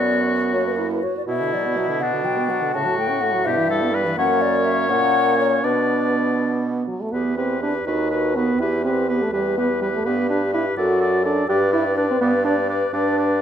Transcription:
0.00 1.01 F#2 soft
0.00 0.55 B3 soft
0.00 0.52 F#4 soft
0.00 0.88 F#4 soft
0.00 0.22 D5 medium
0.53 1.03 A#3 soft
0.53 0.76 F#4 soft
0.53 0.65 C#5 medium
0.67 0.72 B4 soft
0.77 1.04 E4 soft
0.77 0.84 A#4 soft
0.92 1.05 B4 soft
1.03 1.27 F#4 soft
1.03 1.16 C#5 soft
1.17 1.22 D5 soft
1.27 2.70 B2 soft
1.27 1.42 B2 soft
1.27 2.04 E4 medium
1.27 3.47 F#4 soft
1.27 1.55 E5 medium
1.41 1.55 D3 soft
1.54 1.66 F#3 soft
1.54 1.79 D5 medium
1.65 1.78 B3 soft
1.77 1.90 F#3 soft
1.77 2.02 E5 medium
1.88 2.03 D3 soft
2.01 2.15 B2 soft
2.01 2.73 D4 soft
2.01 2.27 F#5 medium
2.13 2.27 D3 soft
2.25 2.39 F#3 soft
2.25 2.52 G5 medium
2.38 2.51 B3 soft
2.49 2.63 F#3 soft
2.49 2.76 F#5 medium
2.62 2.74 D3 soft
2.74 3.48 A2 soft
2.74 2.87 C#3 soft
2.74 3.48 F#4 soft
2.74 2.97 A5 medium
2.86 2.99 F#3 soft
2.98 3.11 A3 soft
2.98 3.23 G5 medium
3.10 3.23 C#4 soft
3.21 3.36 A3 soft
3.21 3.46 F#5 medium
3.34 3.46 F#3 soft
3.45 4.17 G2 medium
3.45 3.58 B2 soft
3.45 4.01 E4 soft
3.45 3.70 G4 soft
3.45 3.92 E5 medium
3.57 3.71 E3 soft
3.70 3.83 G3 soft
3.70 3.96 A4 medium
3.81 3.95 B3 soft
3.93 4.07 G3 soft
3.93 4.18 B4 medium
4.05 4.16 E3 soft
4.16 4.92 F#2 medium
4.16 4.86 A#3 medium
4.16 4.86 C#4 medium
4.16 5.66 C#5 medium
4.16 4.43 F#5 medium
4.42 4.66 D5 medium
4.65 4.91 E5 medium
4.89 5.63 A#2 medium
4.89 5.65 A#3 soft
4.89 5.65 C#4 medium
4.89 5.38 F#5 medium
5.39 5.63 C#5 medium
5.63 6.85 B2 soft
5.63 6.87 B3 soft
5.63 6.88 D4 soft
5.63 6.36 B4 medium
5.63 6.76 D5 medium
6.88 7.02 F#3 soft
7.01 7.14 A3 soft
7.12 7.78 E2 soft
7.12 7.37 B3 soft
7.12 7.37 G4 soft
7.12 7.37 B4 soft
7.37 7.62 C4 soft
7.37 7.61 G4 soft
7.37 7.62 B4 soft
7.61 7.74 D4 soft
7.61 7.86 G4 soft
7.61 7.86 B4 soft
7.86 8.52 D#2 soft
7.86 8.38 D#4 soft
7.86 8.11 F#4 soft
7.86 8.10 B4 soft
7.86 8.57 B4 soft
8.11 8.35 F#4 soft
8.11 8.35 B4 soft
8.36 8.62 B3 soft
8.36 8.60 F#4 soft
8.36 8.60 B4 soft
8.60 9.25 E2 soft
8.60 8.83 E4 medium
8.60 8.84 G4 soft
8.60 9.34 G4 soft
8.60 8.84 B4 soft
8.84 9.11 C4 soft
8.84 9.08 G4 soft
8.84 9.08 B4 soft
9.09 9.23 B3 soft
9.09 9.33 G4 soft
9.09 9.32 B4 soft
9.22 9.32 A3 soft
9.32 9.97 E2 soft
9.32 9.57 G3 soft
9.32 9.57 G4 soft
9.32 10.05 B4 soft
9.32 9.57 B4 soft
9.58 9.69 B3 soft
9.58 9.82 G4 soft
9.58 9.81 B4 soft
9.81 9.87 G3 soft
9.81 10.06 G4 soft
9.81 10.05 B4 soft
9.95 10.08 A3 soft
10.05 10.70 G2 soft
10.05 10.29 B3 soft
10.05 10.76 G4 soft
10.05 10.30 G4 soft
10.05 10.29 B4 soft
10.29 10.41 D4 medium
10.29 10.53 G4 soft
10.29 10.53 B4 soft
10.54 10.65 E4 medium
10.54 10.77 G4 soft
10.54 10.76 B4 soft
10.77 11.41 F#2 soft
10.77 11.25 F#4 medium
10.77 11.00 A4 soft
10.77 11.48 A4 soft
10.77 11.01 D5 soft
11.01 11.24 A4 soft
11.01 11.24 D5 soft
11.25 11.48 D4 medium
11.25 11.48 A4 soft
11.25 11.49 D5 soft
11.49 12.13 G2 medium
11.49 11.60 G4 medium
11.49 13.42 B4 medium
11.49 11.72 B4 soft
11.49 11.72 D5 soft
11.72 11.84 E4 medium
11.72 11.96 B4 soft
11.72 11.97 D5 soft
11.97 12.09 D4 soft
11.97 12.20 B4 soft
11.97 12.21 D5 soft
12.10 12.16 C4 medium
12.21 12.85 G2 medium
12.21 12.32 B3 medium
12.21 12.45 B4 soft
12.21 12.45 D5 soft
12.44 12.56 D4 medium
12.44 12.69 B4 soft
12.44 12.69 D5 soft
12.69 12.92 B4 soft
12.69 12.93 D5 soft
12.93 13.42 G2 medium
12.93 13.42 D4 medium
12.93 13.17 B4 soft
12.93 13.18 D5 soft
13.17 13.41 B4 soft
13.17 13.42 D5 soft

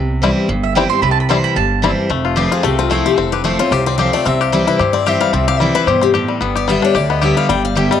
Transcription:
0.00 0.30 C2 medium
0.00 0.47 C3 medium
0.22 0.48 E3 medium
0.22 0.48 G3 loud
0.22 0.29 G3 medium
0.22 0.48 C4 loud
0.22 0.29 C4 medium
0.22 0.29 E4 medium
0.22 0.49 E4 loud
0.49 0.84 G1 loud
0.49 1.00 G2 loud
0.64 0.75 E5 medium
0.75 0.90 E3 loud
0.75 0.90 G3 loud
0.75 0.83 G3 medium
0.75 0.90 C4 loud
0.75 0.83 C4 medium
0.75 0.89 E4 loud
0.75 0.83 E4 medium
0.75 0.89 G5 medium
0.90 1.03 C4 medium
0.90 1.02 E4 medium
0.90 1.02 C6 loud
1.02 1.38 C2 medium
1.02 1.54 C3 loud
1.02 1.11 B5 medium
1.11 1.20 A5 loud
1.20 1.29 B5 medium
1.29 1.55 E3 medium
1.29 1.55 G3 medium
1.29 1.37 G3 medium
1.29 1.56 C4 loud
1.29 1.37 C4 medium
1.29 1.56 E4 loud
1.29 1.37 E4 medium
1.29 1.44 C6 loud
1.44 1.56 B5 loud
1.56 1.92 G1 medium
1.56 2.08 G2 medium
1.56 2.01 A5 medium
1.82 2.08 E3 medium
1.82 2.09 G3 loud
1.82 1.90 G3 medium
1.82 2.09 C4 loud
1.82 1.90 C4 medium
1.82 1.90 E4 medium
1.82 2.10 E4 medium
2.09 2.46 F1 medium
2.09 2.61 F2 medium
2.09 2.49 A3 medium
2.25 2.50 F4 medium
2.36 2.62 F3 loud
2.36 2.63 A3 medium
2.36 2.63 C4 loud
2.36 2.63 F4 medium
2.36 2.76 G4 medium
2.36 2.52 B4 medium
2.52 2.88 F4 medium
2.52 2.64 G#4 medium
2.63 2.99 C2 medium
2.63 3.15 C3 loud
2.63 2.89 A3 medium
2.63 2.79 A4 medium
2.79 3.05 C4 medium
2.79 2.91 F4 medium
2.90 3.16 F3 medium
2.90 3.17 A3 medium
2.90 3.30 A3 medium
2.90 3.17 C4 medium
2.90 3.05 E4 medium
2.90 3.17 F4 loud
3.06 3.17 C4 medium
3.06 3.17 G4 medium
3.17 3.53 F1 medium
3.17 3.69 F2 medium
3.17 3.86 C4 medium
3.17 3.32 A4 medium
3.32 3.69 G4 medium
3.32 3.43 B4 medium
3.44 3.59 F3 loud
3.44 3.84 A3 medium
3.44 3.59 A3 loud
3.44 3.59 C4 medium
3.44 3.58 F4 medium
3.44 3.59 C5 medium
3.59 3.72 C4 medium
3.59 3.71 F4 medium
3.59 3.96 F4 medium
3.59 3.72 C#5 loud
3.71 4.07 C2 loud
3.71 4.24 C3 medium
3.71 3.98 G4 medium
3.71 3.86 C5 medium
3.86 4.25 C4 medium
3.86 3.97 D5 loud
3.98 4.13 F3 medium
3.98 4.13 A3 medium
3.98 4.13 C4 loud
3.98 4.12 F4 loud
3.98 4.26 G4 medium
3.98 4.13 F5 loud
4.13 4.26 A3 medium
4.13 4.26 C4 medium
4.13 4.25 F4 medium
4.13 4.25 D5 medium
4.25 4.61 C2 medium
4.25 4.77 C3 medium
4.25 4.65 C4 medium
4.25 4.41 E5 medium
4.41 4.79 G4 medium
4.41 4.52 F5 loud
4.52 4.78 E3 medium
4.52 5.21 G3 medium
4.52 4.79 G3 medium
4.52 4.79 C4 loud
4.52 4.79 E4 loud
4.52 4.67 D5 medium
4.67 5.04 E4 medium
4.67 4.79 B4 medium
4.79 5.15 G2 medium
4.79 5.32 G2 medium
4.79 5.06 G4 medium
4.79 4.94 C5 medium
4.93 5.31 C4 medium
4.93 5.06 D5 medium
5.06 5.32 E3 medium
5.06 5.32 G3 medium
5.06 5.33 C4 loud
5.06 5.33 E4 loud
5.06 5.47 G4 medium
5.06 5.20 E5 medium
5.21 5.60 G3 medium
5.21 5.33 F5 loud
5.33 5.69 C2 medium
5.33 5.85 C3 loud
5.33 5.72 C4 medium
5.33 5.47 E5 medium
5.48 5.87 G4 medium
5.48 5.61 F5 loud
5.60 5.86 E3 medium
5.60 6.28 G3 medium
5.60 5.87 G3 medium
5.60 5.87 C4 loud
5.60 5.87 E4 loud
5.60 5.75 D5 medium
5.75 6.12 E4 medium
5.75 5.88 B4 loud
5.87 6.23 G2 medium
5.87 6.13 B2 loud
5.87 6.13 G4 medium
5.87 6.02 C5 medium
6.01 6.39 C4 medium
6.01 6.10 G4 medium
6.14 6.40 A2 loud
6.14 6.55 G4 medium
6.28 6.67 G3 medium
6.41 6.77 G1 medium
6.41 6.93 G2 medium
6.41 6.80 B3 medium
6.55 6.94 G4 medium
6.55 6.69 D5 medium
6.67 6.94 D3 medium
6.67 7.36 G3 medium
6.67 6.94 G3 medium
6.67 6.94 B3 loud
6.67 6.95 G4 loud
6.67 6.83 E5 loud
6.82 7.19 D4 medium
6.82 6.96 C#5 loud
6.95 7.31 D2 loud
6.95 7.21 D3 loud
6.95 7.21 G4 medium
6.95 7.11 D5 medium
7.10 7.47 B3 medium
7.10 7.23 D#5 medium
7.21 7.48 D3 loud
7.21 7.48 G3 medium
7.21 7.49 B3 loud
7.21 7.76 G4 medium
7.21 7.49 G4 loud
7.21 7.37 E5 medium
7.37 7.49 G3 medium
7.37 7.49 F5 loud
7.49 7.85 G1 medium
7.49 8.00 G2 medium
7.49 7.90 G3 medium
7.49 7.64 G5 loud
7.65 7.76 F5 medium
7.75 7.90 D3 medium
7.75 7.91 G3 medium
7.75 7.91 B3 medium
7.75 8.00 G4 medium
7.75 7.90 G4 loud
7.75 7.91 E5 medium
7.91 8.00 G3 medium
7.91 8.00 B3 medium
7.91 8.00 G4 medium
7.91 8.00 D#5 medium

